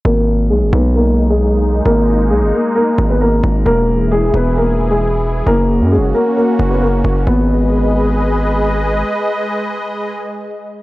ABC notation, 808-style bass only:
X:1
M:4/4
L:1/16
Q:1/4=133
K:G#m
V:1 name="808-style bass" clef=bass
G,,,4 B,,, G,,, B,,,8- B,,,2 | G,,,4 B,,, G,,, z4 G,,,4 G,,,2 | E,,,6 E,,,8- E,,,2 | F,,,3 F,,3/2 F,,,3/2 z4 F,,,4 F,,,2 |
G,,,16 | z16 |]